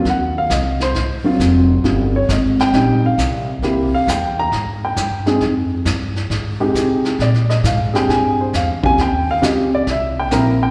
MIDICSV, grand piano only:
0, 0, Header, 1, 2, 480
1, 0, Start_track
1, 0, Tempo, 446097
1, 57, Time_signature, 4, 2, 24, 8
1, 11520, End_track
2, 0, Start_track
2, 0, Title_t, "Grand piano"
2, 0, Program_c, 0, 0
2, 102, Note_on_c, 0, 78, 86
2, 396, Note_off_c, 0, 78, 0
2, 410, Note_on_c, 0, 77, 91
2, 547, Note_off_c, 0, 77, 0
2, 564, Note_on_c, 0, 75, 79
2, 867, Note_off_c, 0, 75, 0
2, 887, Note_on_c, 0, 72, 93
2, 1336, Note_on_c, 0, 54, 66
2, 1339, Note_on_c, 0, 58, 57
2, 1347, Note_on_c, 0, 60, 59
2, 1353, Note_on_c, 0, 65, 77
2, 1945, Note_off_c, 0, 54, 0
2, 1946, Note_off_c, 0, 58, 0
2, 1949, Note_off_c, 0, 72, 0
2, 1951, Note_off_c, 0, 60, 0
2, 1954, Note_off_c, 0, 65, 0
2, 1980, Note_on_c, 0, 55, 59
2, 1984, Note_on_c, 0, 60, 53
2, 1986, Note_on_c, 0, 65, 66
2, 1991, Note_on_c, 0, 61, 58
2, 2273, Note_off_c, 0, 55, 0
2, 2275, Note_off_c, 0, 60, 0
2, 2276, Note_off_c, 0, 65, 0
2, 2279, Note_off_c, 0, 61, 0
2, 2324, Note_on_c, 0, 73, 82
2, 2466, Note_off_c, 0, 73, 0
2, 2494, Note_on_c, 0, 75, 75
2, 2793, Note_off_c, 0, 75, 0
2, 2805, Note_on_c, 0, 79, 100
2, 2943, Note_on_c, 0, 55, 73
2, 2945, Note_on_c, 0, 60, 63
2, 2953, Note_on_c, 0, 63, 77
2, 2954, Note_on_c, 0, 61, 64
2, 3235, Note_off_c, 0, 55, 0
2, 3235, Note_off_c, 0, 60, 0
2, 3240, Note_off_c, 0, 61, 0
2, 3240, Note_off_c, 0, 63, 0
2, 3243, Note_off_c, 0, 79, 0
2, 3292, Note_on_c, 0, 77, 84
2, 3871, Note_off_c, 0, 77, 0
2, 3902, Note_on_c, 0, 58, 70
2, 3904, Note_on_c, 0, 60, 58
2, 3912, Note_on_c, 0, 64, 64
2, 3912, Note_on_c, 0, 67, 70
2, 4194, Note_off_c, 0, 58, 0
2, 4195, Note_off_c, 0, 60, 0
2, 4199, Note_off_c, 0, 64, 0
2, 4199, Note_off_c, 0, 67, 0
2, 4244, Note_on_c, 0, 77, 95
2, 4386, Note_off_c, 0, 77, 0
2, 4409, Note_on_c, 0, 79, 76
2, 4711, Note_off_c, 0, 79, 0
2, 4729, Note_on_c, 0, 82, 100
2, 5164, Note_off_c, 0, 82, 0
2, 5215, Note_on_c, 0, 79, 83
2, 5662, Note_on_c, 0, 56, 72
2, 5670, Note_on_c, 0, 60, 72
2, 5671, Note_on_c, 0, 63, 67
2, 5681, Note_on_c, 0, 68, 86
2, 5792, Note_off_c, 0, 79, 0
2, 5803, Note_off_c, 0, 56, 0
2, 5807, Note_off_c, 0, 60, 0
2, 5808, Note_off_c, 0, 63, 0
2, 5813, Note_off_c, 0, 68, 0
2, 7104, Note_on_c, 0, 56, 75
2, 7105, Note_on_c, 0, 60, 66
2, 7111, Note_on_c, 0, 63, 68
2, 7112, Note_on_c, 0, 67, 81
2, 7708, Note_off_c, 0, 56, 0
2, 7708, Note_off_c, 0, 60, 0
2, 7711, Note_off_c, 0, 63, 0
2, 7712, Note_off_c, 0, 67, 0
2, 7767, Note_on_c, 0, 74, 86
2, 8066, Note_on_c, 0, 75, 85
2, 8068, Note_off_c, 0, 74, 0
2, 8215, Note_off_c, 0, 75, 0
2, 8241, Note_on_c, 0, 77, 81
2, 8538, Note_on_c, 0, 68, 69
2, 8542, Note_on_c, 0, 60, 60
2, 8545, Note_off_c, 0, 77, 0
2, 8553, Note_on_c, 0, 62, 60
2, 8553, Note_on_c, 0, 67, 77
2, 8565, Note_on_c, 0, 79, 90
2, 8705, Note_off_c, 0, 79, 0
2, 8716, Note_on_c, 0, 80, 95
2, 9022, Note_off_c, 0, 80, 0
2, 9047, Note_on_c, 0, 72, 61
2, 9144, Note_off_c, 0, 68, 0
2, 9146, Note_off_c, 0, 60, 0
2, 9151, Note_off_c, 0, 62, 0
2, 9151, Note_off_c, 0, 67, 0
2, 9185, Note_off_c, 0, 72, 0
2, 9206, Note_on_c, 0, 77, 79
2, 9496, Note_on_c, 0, 60, 66
2, 9499, Note_on_c, 0, 61, 62
2, 9501, Note_on_c, 0, 65, 61
2, 9507, Note_off_c, 0, 77, 0
2, 9509, Note_on_c, 0, 67, 73
2, 9530, Note_on_c, 0, 80, 120
2, 9638, Note_off_c, 0, 60, 0
2, 9639, Note_off_c, 0, 61, 0
2, 9641, Note_off_c, 0, 65, 0
2, 9645, Note_off_c, 0, 67, 0
2, 9666, Note_off_c, 0, 80, 0
2, 9697, Note_on_c, 0, 79, 86
2, 9992, Note_off_c, 0, 79, 0
2, 10014, Note_on_c, 0, 77, 98
2, 10130, Note_on_c, 0, 60, 72
2, 10131, Note_on_c, 0, 61, 66
2, 10136, Note_on_c, 0, 65, 64
2, 10143, Note_on_c, 0, 67, 81
2, 10148, Note_off_c, 0, 77, 0
2, 10163, Note_on_c, 0, 75, 87
2, 10425, Note_off_c, 0, 60, 0
2, 10425, Note_off_c, 0, 61, 0
2, 10428, Note_off_c, 0, 65, 0
2, 10432, Note_off_c, 0, 67, 0
2, 10465, Note_off_c, 0, 75, 0
2, 10487, Note_on_c, 0, 74, 92
2, 10624, Note_off_c, 0, 74, 0
2, 10665, Note_on_c, 0, 76, 89
2, 10956, Note_off_c, 0, 76, 0
2, 10970, Note_on_c, 0, 79, 90
2, 11097, Note_on_c, 0, 58, 68
2, 11098, Note_on_c, 0, 60, 68
2, 11105, Note_off_c, 0, 79, 0
2, 11107, Note_on_c, 0, 64, 58
2, 11109, Note_on_c, 0, 70, 75
2, 11117, Note_on_c, 0, 82, 94
2, 11388, Note_off_c, 0, 58, 0
2, 11388, Note_off_c, 0, 60, 0
2, 11393, Note_off_c, 0, 64, 0
2, 11394, Note_off_c, 0, 70, 0
2, 11421, Note_off_c, 0, 82, 0
2, 11436, Note_on_c, 0, 79, 94
2, 11520, Note_off_c, 0, 79, 0
2, 11520, End_track
0, 0, End_of_file